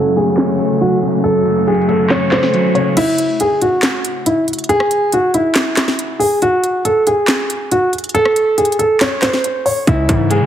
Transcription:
Already playing: F#2 C#3 F#3 A3 C#4 F#4 A4
0.16 A3 G#4, closed hi-hat
0.37 C#4, snare, clap, closed hi-hat
0.59 A3, closed hi-hat
0.81 F#3 F#4, closed hi-hat
1.02 C#3, closed hi-hat
1.08 closed hi-hat
1.13 closed hi-hat
1.19 closed hi-hat
1.24 F#2 A4, closed hi-hat
1.45 C#3, closed hi-hat
1.67 F#3 G#4, closed hi-hat
1.75 closed hi-hat
1.82 closed hi-hat
1.88 A3 A4, closed hi-hat
2.10 C#4 C#5, snare, clap, closed hi-hat
2.32 A3 C5, snare, clap, closed hi-hat
2.43 snare
2.54 F#3, closed hi-hat
2.75 C#3 C#5, closed hi-hat
2.97 E4, closed hi-hat, crash
3.18 closed hi-hat
3.40 G#4, closed hi-hat
3.62 F#4, closed hi-hat
3.83 snare, clap, closed hi-hat
4.05 closed hi-hat
4.26 E4, closed hi-hat
4.48 closed hi-hat
4.53 closed hi-hat
4.59 closed hi-hat
4.64 closed hi-hat
4.69 G#4, closed hi-hat
4.80 cross-stick
4.91 closed hi-hat
5.12 F#4, closed hi-hat
5.34 E4, closed hi-hat
5.55 snare, clap, closed hi-hat
5.77 snare, clap, closed hi-hat
5.88 snare
5.99 closed hi-hat
6.19 G#4, open hi-hat
6.42 F#4, closed hi-hat
6.64 closed hi-hat
6.85 A4, closed hi-hat
7.07 G#4, closed hi-hat
7.28 snare, clap, closed hi-hat
7.50 closed hi-hat
7.71 F#4, closed hi-hat
7.93 closed hi-hat
7.98 closed hi-hat
8.04 closed hi-hat
8.09 closed hi-hat
8.14 A4, closed hi-hat
8.25 cross-stick
8.36 closed hi-hat
8.58 G#4, closed hi-hat
8.65 closed hi-hat
8.72 closed hi-hat
8.79 A4, closed hi-hat
9.01 C#5, cross-stick, snare, clap, closed hi-hat
9.22 C5, snare, clap, closed hi-hat
9.33 snare
9.44 closed hi-hat
9.66 C#5, open hi-hat
9.87 C#2 C#3 E4, kick, closed hi-hat
10.09 G#2 E3, kick, closed hi-hat
10.30 G#3 G#4, closed hi-hat
10.41 E3

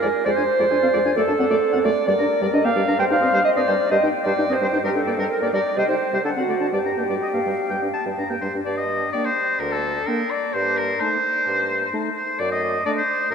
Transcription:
Already playing: A#4 G#5
0.02 F2 G#3 D5
0.25 F2 G#3 C5 D5
0.36 F2 D4 G#5
0.59 F2 G#3 D5
0.70 F2 D4 D5 G#5
0.82 F2 C4 F5
0.93 F2 G#3 D5
1.04 F2 D4 G#5
1.16 F#2 A3 A4 D5
1.27 F#2 D4 A5
1.38 F#2 C4 F#5
1.50 F#2 A3 D5
1.73 F#2 C4 F#5
1.84 F#2 A3 D5
2.07 G2 G3 A#4 D5
2.18 G2 D4 A#5
2.41 G2 G3 D5
2.53 G2 D4 D#5 A#5
2.64 G2 A#3 F5 G5
2.76 G2 G3 D5
2.87 G2 D4 A#5
2.99 G2 G3 C5 G5
3.10 G2 D#4 F5 G5
3.21 G2 C4 D#5
3.33 G2 G3 C5
3.44 C5 D#5
3.56 G2 C4 D5 D#5
3.67 G2 G3 C5
3.91 G2 G3 C5 D#5 G5
4.03 G2 D#4 G5
4.22 G2 D5
4.26 G3 C5
4.38 G2 D#4 G5
4.49 G2 C4 C5 D#5
4.61 G2 G3 C5
4.73 G2 D#4 G5
4.84 G2 G3 G4 A#4
4.95 G2 D4 A4 G5
5.06 G2 A#3 D5
5.18 G2 G3 A#4
5.30 A#4
5.42 G2 A#3 D5
5.53 G2 G3 A#4 D5
5.77 C3 G3 C5 D#5 G5
5.88 C3 D#4 C5 G5
6.13 C3 G3 C5
6.24 D3 D4 A4 F#5 A5
6.36 D3 C4 F#4 F#5
6.49 D3 A3 D5
6.60 D3 D4 A5
6.73 G2 G3 G4 D5 G5
6.85 G2 D4 A#5
6.97 G2 A#3 G5
7.09 G2 G3 D5
7.22 D#5
7.34 G2 A#3 F5
7.46 G2 G3
7.70 G2 G3 G5
7.82 G2 D4
7.93 A5
8.06 G2 G3
8.18 G2 D4 A#5
8.29 G2 A#3 G5
8.41 G2 G3 C5
8.54 G2 D4
8.65 G2 D5
8.77 D#5
9.13 A#3 D4 D5 G5
9.25 C5
9.60 D2 A#4
9.72 A4
10.06 A#3 D4 A#4 G5
10.31 D5
10.54 G2 C5
10.77 A#4
11.00 A3 D#4 C5 A5
11.47 G2
11.93 A3 D#4 A5
12.16 C5
12.40 F#2 D5
12.52 D#5
12.86 A3 D4 D5 A5
12.97 C5
13.31 F#2 A#4

